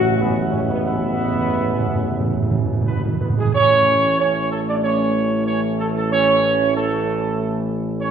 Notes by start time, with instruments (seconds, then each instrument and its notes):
Already playing: tuba A1, trombone section F#3 G#3, french horn section F#4, trumpet section E5 F#5
0.01 timpani A2
0.08 timpani A2
0.16 timpani A2
0.20 trombone section F#3 G#3, french horn section B3, trumpet section E5 F#5
0.30 timpani A2
0.46 timpani A2
0.52 timpani A2, french horn section C#4
0.62 timpani A2
0.69 timpani A2, french horn section B3
0.77 timpani A2
0.85 timpani A2, trombone section F#3 G#3, french horn section B3, trumpet section E5 F#5
0.94 timpani A2
1.10 timpani A2
1.17 timpani A2
1.25 timpani A2
1.33 timpani A2
1.41 timpani A2
1.49 timpani A2
1.57 timpani A2
1.64 timpani A2
1.72 timpani A2
1.80 timpani A2
1.87 timpani A2
1.95 timpani A2
2.03 timpani A2
2.11 timpani A2
2.20 timpani A2
2.27 timpani A2
2.35 timpani A2
2.43 timpani A2
2.51 timpani A2
2.58 timpani A2
2.65 timpani A2
2.73 timpani A2
2.81 timpani A2
2.86 timpani A2, french horn section B3, trumpet section B4
2.97 timpani A2
3.05 timpani A2
3.13 timpani A2
3.20 timpani A2, french horn section B3, trumpet section B4
3.30 timpani A2
3.38 timpani A2, french horn section G#3, trumpet section G#4
3.45 timpani A2
3.54 tuba A1, trombone section E3 A3, french horn section C#4, trumpet section C#5
4.20 french horn section C#4, trumpet section C#5
4.52 french horn section A3, trumpet section A4
4.69 french horn section D4, trumpet section D5
4.84 french horn section C#4, trumpet section C#5
5.47 french horn section C#4, trumpet section C#5
5.79 french horn section A3, trumpet section A4
5.96 french horn section A3, trumpet section A4
6.12 french horn section C#4, trumpet section C#5
6.76 french horn section A3, trumpet section A4
8.01 french horn section C#4, trumpet section C#5